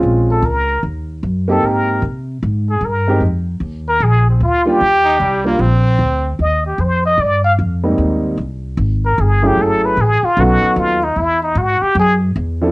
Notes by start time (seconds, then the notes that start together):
Already playing: G#3 C4 C#4 F4
0.03 A#1
0.31 A4
0.42 C#2 A#4
0.83 D#2
1.23 F#2
1.48 A#3 C4 D#4 G4 A4
1.63 G#2 A#4
2.02 C3
2.43 G#2
2.70 G#4
2.81 G2
2.85 A#4
3.08 G#3 C4 D#4 G4
3.21 F2
3.60 D#2
3.89 A#4
4.00 A#1 G#4
4.30 C4
4.40 D2 F4
4.65 G3 A#3 D4 F4 G4
4.81 D#2
5.04 D#4
5.20 C2 G3
5.45 G3 A#3 D4 F4
5.59 A#1 C4
5.99 D2
6.39 D#2 D#5
6.67 G4
6.78 F2 C5
7.06 D#5
7.18 G2 D5
7.44 F5
7.59 F2
7.83 G#2 G3 A#3 C4 D#4
7.98 D#2
8.37 C2
8.77 G#1
9.06 A#4
9.18 G1 G#4
9.42 F#3 A3 C#4 E4 G#4
9.47 G4
9.57 F#1
9.62 A4
9.85 B4
9.97 A1
10.01 G#4
10.23 F4, muted upright bass stroke
10.37 B1 F#3 B3 C#4 D#4 F#4 A4
10.62 muted upright bass stroke
10.76 D#2 F4
11.04 D#4
11.16 E2 E4
11.43 D#4
11.55 G#2 F#4
11.82 G4, muted upright bass stroke
11.95 F#2
11.99 G#4
12.36 E2
12.62 F3 C4 D4 E4 A4